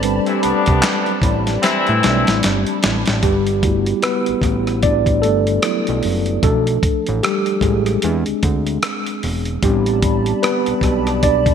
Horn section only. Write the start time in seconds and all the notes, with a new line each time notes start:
0.26 E3 C4 E4
0.42 G3 B3 D4
1.62 E3 C4 E4